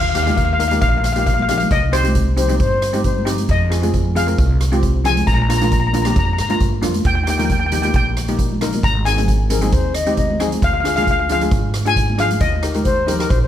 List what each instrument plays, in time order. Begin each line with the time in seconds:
Already playing: upright bass D#2
0.01 steel pan F5
0.09 steel pan F5
0.15 steel pan A#3 D#4 G4 F5, cross-stick, closed hi-hat
0.23 steel pan A#3 D#4 F5, closed hi-hat
0.27 steel pan G4 F5, high conga, low conga
0.37 steel pan F5, kick, closed hi-hat
0.45 steel pan F5
0.53 steel pan F5
0.59 steel pan A#3 D#4 A#4 F5, closed hi-hat
0.68 steel pan A#3 D#4 G4 F5, closed hi-hat
0.73 high conga
0.81 upright bass A#1, steel pan F5, kick, closed hi-hat
0.89 steel pan F5
0.97 steel pan F5
1.04 steel pan F5, cross-stick, closed hi-hat
1.13 steel pan A#3 D#4 G4 F5, closed hi-hat
1.17 steel pan F5, high conga
1.26 steel pan F5, kick, closed hi-hat
1.34 steel pan F5
1.39 steel pan F5, high conga
1.49 steel pan A#3 D#4 G4 F5, cross-stick, closed hi-hat, low conga
1.58 steel pan F5, closed hi-hat
1.62 high conga
1.71 upright bass C2, steel pan D#5, kick, closed hi-hat
1.92 steel pan C4 D#4 G4 C5, cross-stick, closed hi-hat
2.03 steel pan C4 D#4 G4, closed hi-hat, high conga
2.15 kick, closed hi-hat
2.37 steel pan C4 D#4 G4, flute C5, closed hi-hat, low conga
2.48 steel pan C4 D#4 G4, closed hi-hat, high conga
2.59 upright bass G2, flute C5, kick, closed hi-hat
2.82 cross-stick, closed hi-hat
2.93 steel pan C4 D#4 G4, closed hi-hat, high conga
3.04 flute C5, kick, closed hi-hat
3.18 high conga
3.25 steel pan C4 D#4 G4, cross-stick, closed hi-hat, low conga
3.38 closed hi-hat, high conga
3.49 upright bass F2, steel pan D#5, kick, closed hi-hat
3.70 steel pan C4 F4 G#4, cross-stick, closed hi-hat
3.82 steel pan C4 F4 G#4, closed hi-hat, high conga, low conga
3.94 kick, closed hi-hat
4.15 steel pan C4 F4 G#4 F5, closed hi-hat, low conga
4.26 steel pan C4 F4 A#4, closed hi-hat, high conga
4.38 upright bass C2, kick, closed hi-hat
4.61 cross-stick, closed hi-hat
4.72 steel pan C4 F4 G4, closed hi-hat, high conga
4.83 kick, closed hi-hat
5.04 steel pan C4 F4 G#4 G#5, cross-stick, closed hi-hat, low conga
5.17 closed hi-hat, high conga
5.27 upright bass A#1, steel pan A#5, kick, closed hi-hat
5.34 steel pan A#5
5.42 steel pan A#5
5.49 steel pan A#3 D4 F4 A#5, cross-stick, closed hi-hat
5.57 steel pan A#3 A#5
5.61 steel pan D4 F4 A#5, closed hi-hat, high conga, low conga
5.72 steel pan A#5, kick, closed hi-hat
5.80 steel pan A#5
5.87 steel pan A#5
5.93 steel pan A#3 D4 F4 A#5, closed hi-hat, low conga
6.02 steel pan A#3 D4 G4 A#5, cross-stick, closed hi-hat
6.07 steel pan A#5, high conga
6.16 upright bass F2, steel pan A#5, kick, closed hi-hat
6.25 steel pan A#5
6.33 steel pan A#5
6.38 upright bass G#2, steel pan A#5, cross-stick, closed hi-hat
6.49 steel pan A#3 D4 F4 A#5, closed hi-hat, high conga
6.60 upright bass G2, kick, closed hi-hat
6.81 upright bass F2, steel pan A#3 D4 F4, cross-stick, closed hi-hat, low conga
6.94 closed hi-hat, high conga
7.05 upright bass D#2, steel pan G5, kick, closed hi-hat
7.15 steel pan G5
7.24 steel pan A#3 G5, cross-stick, closed hi-hat
7.28 steel pan D#4 G4 G5
7.38 steel pan A#3 D#4 A#4 G5, closed hi-hat, high conga, low conga
7.45 steel pan G5
7.50 steel pan G5, kick, closed hi-hat
7.59 steel pan G5
7.66 steel pan G5
7.72 steel pan A#3 D#4 G4 G5, closed hi-hat, low conga
7.82 steel pan A#3 D#4 G4 G5, closed hi-hat, high conga
7.94 upright bass A#1, steel pan G5, kick, closed hi-hat
8.17 cross-stick, closed hi-hat
8.28 steel pan A#3 D#4 G4, closed hi-hat, high conga
8.39 kick, closed hi-hat
8.52 high conga
8.61 steel pan A#3 D#4 A#4, cross-stick, closed hi-hat, low conga
8.73 closed hi-hat, high conga
8.83 upright bass G#1, steel pan A#5, kick, closed hi-hat
9.05 steel pan C4 D#4 G#4 G#5, cross-stick, closed hi-hat
9.17 steel pan C4 D#4 G#4, closed hi-hat, high conga, low conga
9.28 kick, closed hi-hat
9.50 steel pan C4 D#4 G#4, flute A#4, closed hi-hat, low conga
9.61 steel pan C4 D#4 G#4, flute G#4, closed hi-hat, high conga
9.72 upright bass D#2, flute C5, kick, closed hi-hat
9.95 flute D#5, cross-stick, closed hi-hat
10.07 steel pan C4 D#4 G4, closed hi-hat, high conga
10.17 flute D#5, kick, closed hi-hat
10.30 high conga
10.40 steel pan C4 D#4 G#4, cross-stick, closed hi-hat, low conga
10.52 closed hi-hat, high conga
10.62 upright bass D2, steel pan F5, kick, closed hi-hat
10.74 steel pan F5
10.80 steel pan D4 F5
10.85 steel pan F4 G#4 F5, cross-stick, closed hi-hat
10.96 steel pan D4 F4 G#4 F5, closed hi-hat, high conga, low conga
11.03 steel pan F5
11.07 steel pan F5, kick, closed hi-hat
11.19 steel pan F5
11.29 steel pan D4 F4 G#4 F5, closed hi-hat, low conga
11.41 steel pan D4 F4 G#4, closed hi-hat, high conga
11.51 upright bass G#2, kick, closed hi-hat
11.74 cross-stick, closed hi-hat
11.85 steel pan D4 F4 G#4 G#5, closed hi-hat, high conga
11.96 kick, closed hi-hat
12.10 high conga
12.18 steel pan D4 F4 G#4 F5, cross-stick, closed hi-hat, low conga
12.31 closed hi-hat, high conga
12.40 upright bass D#2, steel pan D#5, kick, closed hi-hat
12.62 steel pan D#4 G4 A#4, cross-stick, closed hi-hat
12.74 steel pan D#4 G4 A#4, closed hi-hat, high conga
12.84 flute C5, kick, closed hi-hat
13.07 steel pan D#4 G4 A#4, closed hi-hat, low conga
13.18 steel pan D#4 G4 A#4, flute A#4, cross-stick, closed hi-hat
13.30 upright bass A#1, flute C5, kick, closed hi-hat
13.42 flute C5